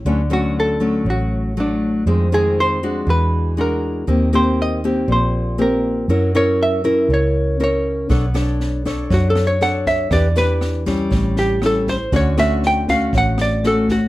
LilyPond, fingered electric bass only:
\new Staff \with { instrumentName = "Fingered electric bass" } { \clef bass \time 4/4 \key d \major \tempo 4 = 119 d,2 a,,2 | f,2 e,2 | ees,2 bes,,2 | fis,2 cis,2 |
b,,2 fis,2 | e,2 a,,2 | d,2 a,,2 | }